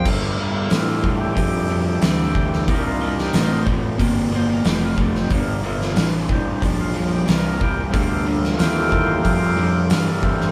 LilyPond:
<<
  \new Staff \with { instrumentName = "Tonewheel organ" } { \time 4/4 \key g \minor \tempo 4 = 91 r8 f'16 <e' f'>4 g'4 g'4~ g'16~ | g'16 <e' f'>8 g'16 c''8 r4 c''16 bes'16 g'16 f'16 d'16 c'16 | bes8 r4 c'8 d'16 f'8 g'16 bes'8 <bes g'>8~ | <bes g'>8 r8 <fis' g'>2 f'16 d'16 c'8 | }
  \new Staff \with { instrumentName = "Tonewheel organ" } { \time 4/4 \key g \minor <g a f'>1 | <bes d' ees'>4. r2 r8 | r8 <a bes f'>8 r2. | <a bes f'>1 | }
  \new Staff \with { instrumentName = "Overdriven electric guitar" } { \clef bass \time 4/4 \key g \minor <g, d>8 <g, d>8 <g, e>8 <g, e>8 <g, f>8 <g, f>8 <g, e>8 <g, e>8 | <c g>8 <c g>8 <c a>8 <c a>8 <c bes>8 <c bes>8 <c a>8 <c a>8 | <g, d>8 <g, d>8 <g, e>8 <g, e>8 <g, f>8 <g, f>8 <g, e>8 <g, e>8 | <g, d>8 <g, d>8 <g, e>8 <g, e>8 <g, f>8 <g, f>8 <g, e>8 <g, e>8 | }
  \new Staff \with { instrumentName = "Fingered electric bass" } { \clef bass \time 4/4 \key g \minor g,4 a,4 f,4 d,4 | c,4 a,,4 g,,4 f,,4 | g,,4 a,,4 bes,,4 c,4 | d,4 ees,4 f,4 g,4 | }
  \new DrumStaff \with { instrumentName = "Drums" } \drummode { \time 4/4 <cymc bd>4 <hho sn>8 bd8 <hho bd>4 <hho sn>8 bd16 sn16 | <hho bd>8. sn16 <hho sn>8 bd8 <hho bd>4 <hho sn>8 bd16 sn16 | <hho bd>8. sn16 <hho sn>8 bd8 <hho bd>4 <hho sn>8 bd8 | <hho bd>8. sn16 <hho sn>8 bd8 <hho bd>4 <hho sn>8 bd16 sn16 | }
>>